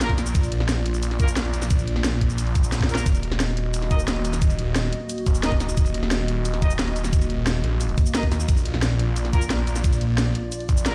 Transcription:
Already playing: A#1 A#3 F4 D5
0.01 A#3 F4 A#4, snare, closed hi-hat, shaker
0.09 kick, closed hi-hat
0.18 snare, closed hi-hat, shaker
0.26 shaker
0.35 A#1, kick, closed hi-hat, shaker
0.43 closed hi-hat, shaker
0.52 A#1, closed hi-hat
0.60 snare
0.69 snare, closed hi-hat, shaker
0.86 closed hi-hat
0.94 shaker
1.03 closed hi-hat, shaker
1.11 snare, closed hi-hat
1.20 A#3 F4 A#4, kick, closed hi-hat, shaker
1.28 shaker
1.36 A#1, snare, closed hi-hat, shaker
1.45 closed hi-hat
1.54 closed hi-hat, shaker
1.62 snare, shaker
1.70 kick, closed hi-hat, shaker
1.79 closed hi-hat, shaker
1.87 closed hi-hat
1.96 snare
2.04 snare, closed hi-hat, shaker
2.21 A#1, kick, closed hi-hat
2.30 shaker
2.38 closed hi-hat, shaker
2.47 closed hi-hat
2.55 kick, closed hi-hat, shaker
2.64 shaker
2.72 snare, closed hi-hat, shaker
2.81 kick, snare, closed hi-hat
2.89 A#3 F4 A#4, closed hi-hat, shaker
2.95 snare, shaker
3.06 D#1 A#3 F#4 D#5, kick, closed hi-hat, shaker
3.15 closed hi-hat, shaker
3.23 D#1, closed hi-hat
3.32 snare
3.40 snare, closed hi-hat, shaker
3.57 closed hi-hat
3.74 closed hi-hat, shaker
3.82 snare, closed hi-hat
3.91 D#4 A#4 D#5, kick, closed hi-hat, shaker
3.99 shaker
4.08 D#1, snare, closed hi-hat, shaker
4.16 closed hi-hat
4.25 closed hi-hat, shaker
4.33 snare, shaker
4.42 kick, closed hi-hat, shaker
4.50 closed hi-hat, shaker
4.59 closed hi-hat
4.76 snare, closed hi-hat, shaker
4.93 closed hi-hat
5.09 closed hi-hat, shaker
5.18 closed hi-hat
5.26 D#1, kick, closed hi-hat, shaker
5.35 shaker
5.43 D#4 A#4 D#5, snare, closed hi-hat, shaker
5.52 kick, closed hi-hat
5.60 snare, closed hi-hat, shaker
5.69 shaker
5.77 D#1, kick, closed hi-hat, shaker
5.86 closed hi-hat, shaker
5.94 D#1, closed hi-hat
6.03 snare
6.11 snare, closed hi-hat, shaker
6.28 closed hi-hat
6.45 closed hi-hat, shaker
6.54 snare, closed hi-hat
6.62 D#4 A#4 D#5, kick, closed hi-hat, shaker
6.71 shaker
6.79 D#1, snare, closed hi-hat, shaker
6.88 closed hi-hat
6.96 closed hi-hat, shaker
7.04 snare, shaker
7.13 kick, closed hi-hat, shaker
7.21 closed hi-hat, shaker
7.30 closed hi-hat
7.47 snare, closed hi-hat, shaker
7.64 A#1, closed hi-hat
7.81 closed hi-hat, shaker
7.89 closed hi-hat
7.98 kick, closed hi-hat, shaker
8.06 shaker
8.15 D#4 A#4 D#5, snare, closed hi-hat, shaker
8.23 kick, closed hi-hat
8.32 D#2, snare, closed hi-hat, shaker
8.40 shaker
8.49 A#1 F4 D5, kick, closed hi-hat, shaker
8.57 closed hi-hat, shaker
8.65 A#1, closed hi-hat
8.74 snare
8.82 snare, closed hi-hat, shaker
8.99 closed hi-hat
9.16 closed hi-hat, shaker
9.25 snare, closed hi-hat
9.33 A#3 F4 A#4, kick, closed hi-hat, shaker
9.42 shaker
9.50 A#1, snare, closed hi-hat, shaker
9.59 closed hi-hat
9.67 closed hi-hat, shaker
9.76 snare, shaker
9.84 kick, closed hi-hat, shaker
9.93 closed hi-hat, shaker
10.01 closed hi-hat
10.18 snare, closed hi-hat, shaker
10.35 closed hi-hat
10.52 closed hi-hat, shaker
10.60 closed hi-hat
10.69 A#1, kick, closed hi-hat, shaker
10.77 shaker
10.86 A#3 F4 A#4, snare, closed hi-hat, shaker

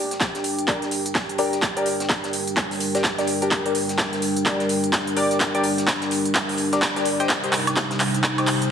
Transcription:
Already playing: G3 D4 G4 A#4 C5 G5
0.11 snare, closed hi-hat
0.20 kick, snare, clap, closed hi-hat
0.35 snare, closed hi-hat
0.44 closed hi-hat, open hi-hat
0.59 closed hi-hat
0.68 D4 G4 A#4 D5, kick, clap, closed hi-hat
0.82 snare, closed hi-hat
0.91 closed hi-hat, open hi-hat
1.06 closed hi-hat
1.15 kick, snare, clap, closed hi-hat
1.29 closed hi-hat
1.38 D4 G4 A#4 D5, closed hi-hat, open hi-hat
1.53 snare, closed hi-hat
1.62 kick, clap, closed hi-hat
1.77 D4 G4 A#4 D5, closed hi-hat
1.86 closed hi-hat, open hi-hat
2.00 snare, closed hi-hat
2.09 kick, snare, clap, closed hi-hat
2.24 snare, closed hi-hat
2.33 closed hi-hat, open hi-hat
2.48 closed hi-hat
2.57 kick, clap, closed hi-hat
2.71 snare, open hi-hat
2.80 closed hi-hat, open hi-hat
2.95 D4 G4 A#4 D5, snare, closed hi-hat
3.04 kick, snare, clap, closed hi-hat
3.18 D4 G4 A#4 D5, snare, closed hi-hat
3.27 closed hi-hat, open hi-hat
3.42 D4 G4 A#4 D5, closed hi-hat
3.51 kick, clap, closed hi-hat
3.66 D4 G4 A#4 D5, closed hi-hat
3.75 closed hi-hat, open hi-hat
3.89 snare, closed hi-hat
3.98 kick, snare, clap, closed hi-hat
4.13 snare, closed hi-hat
4.22 closed hi-hat, open hi-hat
4.37 closed hi-hat
4.46 D4 G4 A#4 D5, kick, clap, closed hi-hat
4.60 snare, closed hi-hat
4.69 closed hi-hat, open hi-hat
4.84 closed hi-hat
4.92 kick, snare, clap, closed hi-hat
5.07 closed hi-hat
5.17 D4 G4 A#4 D5, closed hi-hat, open hi-hat
5.31 snare, closed hi-hat
5.40 kick, clap, closed hi-hat
5.55 D4 G4 A#4 D5, closed hi-hat
5.64 closed hi-hat, open hi-hat
5.78 snare, closed hi-hat
5.87 kick, snare, clap, closed hi-hat
6.02 snare, closed hi-hat
6.11 closed hi-hat, open hi-hat
6.25 closed hi-hat
6.34 kick, clap, closed hi-hat
6.49 snare, open hi-hat
6.58 closed hi-hat, open hi-hat
6.73 D4 G4 A#4 D5, snare, closed hi-hat
6.82 kick, snare, clap, closed hi-hat
6.96 D4 G4 A#4 D5, snare, closed hi-hat
7.05 closed hi-hat, open hi-hat
7.20 G4 C5 D#5 G5, closed hi-hat
7.29 C3 G3 D#4, kick, clap, closed hi-hat, riser
7.44 G4 C5 D#5 G5, closed hi-hat
7.53 clap, closed hi-hat, open hi-hat
7.67 snare, closed hi-hat, high woodblock
7.76 kick, snare, clap, closed hi-hat
7.82 C5
7.91 snare, closed hi-hat
8.00 clap, closed hi-hat, open hi-hat
8.14 closed hi-hat
8.23 kick, clap, closed hi-hat
8.38 G4 C5 D#5 G5, snare, closed hi-hat, high woodblock
8.47 clap, closed hi-hat, open hi-hat
8.62 closed hi-hat

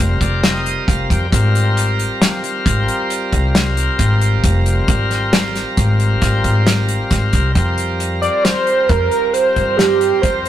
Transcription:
Already playing: G3 C4 F4 A#4
0.00 F1
0.21 F1 D5, kick, closed hi-hat
0.43 D#5, snare, closed hi-hat
0.66 closed hi-hat
0.88 F1 F5, kick, closed hi-hat
1.10 F2 G5, kick, closed hi-hat
1.30 G#1 G3 C4 F4, kick, closed hi-hat
1.34 A#4
1.55 closed hi-hat
1.77 closed hi-hat
1.99 closed hi-hat
2.22 snare, closed hi-hat
2.44 closed hi-hat
2.66 G#1, kick, closed hi-hat
2.88 closed hi-hat
3.10 closed hi-hat
3.33 C2, kick, closed hi-hat
3.55 snare, closed hi-hat
3.77 closed hi-hat
3.99 G#1, kick, closed hi-hat
4.21 closed hi-hat
4.44 F1, kick, closed hi-hat
4.66 closed hi-hat
4.88 G#1, kick, closed hi-hat
5.11 snare, closed hi-hat
5.33 snare, closed hi-hat
5.56 snare, closed hi-hat
5.77 G#1, kick, closed hi-hat
6.00 closed hi-hat
6.22 G#1, kick, snare, closed hi-hat
6.44 G#1, kick, closed hi-hat
6.67 snare, closed hi-hat
6.89 closed hi-hat
7.11 G#1, kick, snare, closed hi-hat
7.33 C2, kick, closed hi-hat
7.54 F2 G3 C4 F4, kick, closed hi-hat
7.58 A#4
7.78 closed hi-hat
8.00 closed hi-hat
8.22 D5, closed hi-hat
8.44 C5, snare, closed hi-hat
8.67 closed hi-hat
8.89 F2 A#4, kick, closed hi-hat
9.11 closed hi-hat
9.33 C5, closed hi-hat
9.56 G2, kick, closed hi-hat
9.77 G4, snare, closed hi-hat
10.01 closed hi-hat
10.22 F2 C5, kick, closed hi-hat
10.45 closed hi-hat

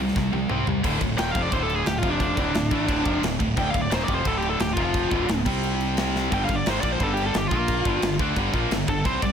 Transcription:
0.00 C2 C3 G3
0.08 snare
0.16 C2 C3 G3, kick, snare
0.33 C2 C3 G3, high tom
0.49 C2 C3 G3 C4, mid tom
0.67 C2 C3 G3, floor tom
0.83 D1 D2 A2 D3, kick, crash
1.00 D1 D2 A2, kick, crash
1.17 D#1 D#2 A#2 D#3 G5, snare, crash
1.31 F1 F2 C3 F5, kick, crash
1.36 F3
1.42 D5
1.51 D1 D2 A2 D3 C5, kick, crash
1.63 A4
1.70 crash
1.75 G#4
1.84 D1 D2 A2 G4, snare, crash
1.98 F2 C3 F4
2.03 F1 F3, kick, crash
2.10 D4
2.20 D4, kick, crash
2.35 D1 D2 A2 D3, kick, crash
2.54 D1 D2 A2, snare, crash
2.71 A1 A2 E3 A3, kick, crash
2.87 D1 D2 A2 D3, kick, crash
3.04 F1 F2 C3 F3, kick, crash
3.21 D1 D2 A2, snare, crash
3.39 D1 D2 A2, kick, crash
3.56 D1 D2 A2 D3 G5, kick, crash
3.70 F5
3.74 D1 D2 A2, kick, crash
3.81 D5
3.90 D#1 D#2 A#2 D#3 C5, snare, crash
4.04 D5
4.08 F1 F2 C3 F3, kick, crash
4.15 C5
4.25 D1 D2 A2 D3 A4, kick, crash
4.38 G4, crash
4.49 A4
4.59 D1 D2 A2 G4, snare, crash
4.73 F1 F2 F4, kick, crash
4.77 C3 F3
4.94 kick, crash
5.10 D1 D2 A2 D3, kick, crash
5.27 D1 D2 A2, snare, crash
5.45 C2 C3 G3 C4, kick, crash
5.63 crash
5.80 crash
5.97 snare, crash
6.16 snare
6.31 G1 G2 D3 G3 G5, kick, crash
6.45 F5, crash
6.49 G1 G2 D3, kick
6.56 D5
6.66 G#1 G#2 D#3 G#3 C5, snare, crash
6.81 A#1 A#2 F3 A#3 D5, kick, crash
6.92 C5
6.99 G1 G2 D3 G3 A4, kick, crash
7.13 G4, crash
7.26 A4
7.34 G1 G2 D3 G4, snare, crash
7.48 A#1 A#2 F3 F4, kick, crash
7.52 A#3
7.68 kick, crash
7.85 G1 G2 D3 G3, kick, crash
8.02 G1 G2 D3, snare, crash
8.19 D2 D3 A3 D4, kick, crash
8.36 G1 G2 D3 G3, kick, crash
8.53 A#1 A#2 F3 A#3, kick, crash
8.71 G1 G2 D3, snare, crash
8.88 G1 G2 D3 A4, kick, crash
9.05 C2 C3 G3 C4 C5, kick, crash
9.21 C2 C3 G3 D5, kick, crash

